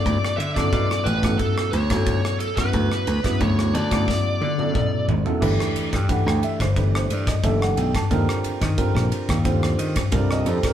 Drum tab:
CC |----------------|----------------|x---------------|----------------|
RD |x-xxx-xxx-xxx-xx|x-xxx-xx--------|--xxx-xxx-xxx-xx|x-xxx-xxx-xxx-xx|
SD |-r-r-r-r-r-r-r-r|-r-r-r-ro-------|-r-r-r-r-r-r-r-r|-r-r-r-r-r-r-r-r|
T1 |----------------|----------oo----|----------------|----------------|
T2 |----------------|------------o---|----------------|----------------|
FT |----------------|--------------oo|----------------|----------------|
BD |o--oo--oo--oo--o|o--oo--oo---o---|o--oo--oo--oo--o|o--oo--oo--oo--o|